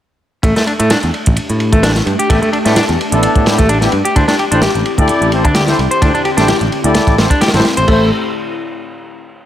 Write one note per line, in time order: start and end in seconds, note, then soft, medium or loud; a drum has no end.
0.43 0.51 A1 medium
0.43 4.12 A3 medium
0.43 0.55 A3 medium
0.43 4.12 D4 medium
0.43 7.84 G4 medium
0.43 kick loud
0.43 closed hi-hat medium
0.43 ride medium
0.56 0.63 A3 medium
0.56 snare medium
0.56 closed hi-hat soft
0.67 0.72 D4 medium
0.67 ride medium
0.79 0.93 A2 medium
0.79 0.89 A3 loud
0.79 closed hi-hat medium
0.79 ride soft
0.90 0.98 D4 medium
0.90 snare loud
0.90 closed hi-hat medium
0.90 ride medium
1.03 1.10 E2 medium
1.03 closed hi-hat soft
1.14 ride medium
1.26 1.37 A1 loud
1.26 kick medium
1.26 closed hi-hat medium
1.36 muted picked electric bass stroke soft
1.36 closed hi-hat medium
1.36 ride medium
1.50 1.74 A2 medium
1.50 closed hi-hat soft
1.60 ride medium
1.72 2.00 A1 medium
1.72 1.82 A3 loud
1.72 kick medium
1.72 closed hi-hat medium
1.83 1.91 D4 medium
1.83 snare loud
1.83 closed hi-hat medium
1.83 ride medium
1.95 snare soft
1.95 closed hi-hat soft
2.06 2.14 G2 medium
2.06 ride medium
2.19 2.29 G4 medium
2.19 closed hi-hat medium
2.30 2.38 A1 medium
2.30 2.41 A3 medium
2.30 2.37 B3 medium
2.30 2.37 D4 medium
2.30 2.37 E4 medium
2.30 2.37 G4 medium
2.30 kick loud
2.30 closed hi-hat medium
2.30 ride medium
2.42 2.49 A3 loud
2.42 closed hi-hat soft
2.53 2.57 D4 medium
2.53 ride medium
2.65 2.79 A2 medium
2.65 2.75 A3 medium
2.65 2.75 B3 medium
2.65 2.75 D4 medium
2.65 2.75 E4 medium
2.65 2.75 G4 medium
2.65 snare soft
2.65 closed hi-hat medium
2.76 2.84 D4 loud
2.76 snare loud
2.76 closed hi-hat medium
2.76 ride medium
2.89 2.95 E2 medium
2.89 closed hi-hat soft
3.01 ride medium
3.12 3.25 A1 loud
3.12 3.44 B3 medium
3.12 3.44 D4 medium
3.12 3.44 E4 medium
3.12 3.44 A4 loud
3.12 closed hi-hat medium
3.23 closed hi-hat medium
3.23 ride medium
3.35 3.61 A2 medium
3.35 kick medium
3.35 closed hi-hat soft
3.46 3.57 B3 medium
3.46 3.57 D4 medium
3.46 3.57 E4 medium
3.46 3.57 G4 medium
3.46 snare loud
3.46 ride medium
3.58 3.86 A1 medium
3.58 3.68 A3 loud
3.58 kick medium
3.58 closed hi-hat medium
3.69 3.77 D4 loud
3.69 closed hi-hat medium
3.69 ride medium
3.81 3.91 B3 medium
3.81 3.91 D4 medium
3.81 3.91 E4 medium
3.81 3.91 G4 loud
3.81 snare soft
3.81 closed hi-hat soft
3.92 4.00 G2 medium
3.92 ride medium
4.05 4.15 G4 medium
4.05 closed hi-hat medium
4.16 4.24 D2 medium
4.16 7.84 D3 medium
4.16 7.84 C4 medium
4.16 4.27 D4 medium
4.16 7.84 E4 medium
4.16 4.23 E4 medium
4.16 4.23 G4 medium
4.16 4.23 A4 medium
4.16 4.23 C5 medium
4.16 kick loud
4.16 closed hi-hat medium
4.16 ride medium
4.28 4.35 D4 medium
4.28 snare medium
4.28 closed hi-hat soft
4.39 4.44 G4 medium
4.39 ride medium
4.51 4.65 A1 medium
4.51 4.61 D4 loud
4.51 4.61 E4 medium
4.51 4.61 G4 medium
4.51 4.61 A4 medium
4.51 4.61 C5 medium
4.51 closed hi-hat medium
4.51 ride soft
4.62 4.70 G4 medium
4.62 snare loud
4.62 closed hi-hat medium
4.62 ride medium
4.75 4.81 A1 medium
4.75 closed hi-hat soft
4.86 ride medium
4.98 5.08 D2 loud
4.98 5.30 E4 loud
4.98 5.30 G4 medium
4.98 5.30 A4 medium
4.98 5.30 D5 loud
4.98 kick loud
4.98 closed hi-hat medium
5.08 muted picked electric bass stroke soft
5.08 closed hi-hat soft
5.08 ride medium
5.21 5.45 A1 medium
5.21 closed hi-hat soft
5.32 5.43 E4 medium
5.32 5.43 G4 medium
5.32 5.43 A4 medium
5.32 5.43 C5 medium
5.32 ride medium
5.44 5.72 D2 medium
5.44 5.54 D4 loud
5.44 kick medium
5.44 closed hi-hat medium
5.55 5.63 G4 loud
5.55 snare loud
5.55 closed hi-hat medium
5.55 ride medium
5.67 5.77 E4 medium
5.67 5.77 G4 medium
5.67 5.77 A4 medium
5.67 5.77 C5 loud
5.67 snare soft
5.67 closed hi-hat soft
5.79 5.86 C2 medium
5.79 ride medium
5.91 6.01 C5 loud
5.91 closed hi-hat medium
6.02 6.10 D2 medium
6.02 6.13 D4 medium
6.02 6.09 E4 medium
6.02 6.09 G4 medium
6.02 6.09 A4 medium
6.02 6.09 C5 medium
6.02 kick loud
6.02 closed hi-hat medium
6.02 ride medium
6.14 6.21 D4 loud
6.14 closed hi-hat soft
6.25 6.30 G4 medium
6.25 ride medium
6.37 6.51 A1 medium
6.37 6.47 D4 loud
6.37 6.47 E4 medium
6.37 6.47 G4 medium
6.37 6.47 A4 medium
6.37 6.47 C5 loud
6.37 snare soft
6.37 closed hi-hat medium
6.48 6.56 G4 loud
6.48 snare loud
6.48 closed hi-hat medium
6.48 ride medium
6.61 6.67 A1 medium
6.61 closed hi-hat soft
6.72 ride medium
6.84 6.98 D2 loud
6.84 7.16 E4 loud
6.84 7.16 G4 medium
6.84 7.16 A4 medium
6.84 7.16 D5 loud
6.84 closed hi-hat medium
6.94 snare loud
6.94 closed hi-hat soft
6.94 ride medium
7.07 7.17 A1 medium
7.07 kick loud
7.07 closed hi-hat soft
7.18 7.26 A1 medium
7.18 7.29 E4 medium
7.18 7.29 G4 medium
7.18 7.29 A4 medium
7.18 7.29 C5 medium
7.18 snare loud
7.18 ride medium
7.30 7.40 D4 loud
7.30 kick medium
7.30 closed hi-hat medium
7.41 7.49 G4 loud
7.41 snare medium
7.41 closed hi-hat medium
7.41 ride medium
7.48 snare medium
7.48 ride medium
7.54 7.60 A1 medium
7.54 7.63 E4 medium
7.54 7.63 G4 medium
7.54 7.63 A4 medium
7.54 7.63 C5 loud
7.54 snare medium
7.54 closed hi-hat soft
7.54 ride medium
7.59 snare medium
7.59 ride medium
7.65 snare loud
7.65 ride medium
7.77 7.84 A1 medium
7.77 7.87 C5 loud
7.77 closed hi-hat medium
7.88 8.10 A1 medium
7.88 8.05 A3 medium
7.88 8.10 A3 medium
7.88 8.06 E4 medium
7.88 8.06 C5 loud
7.88 kick loud
7.88 crash medium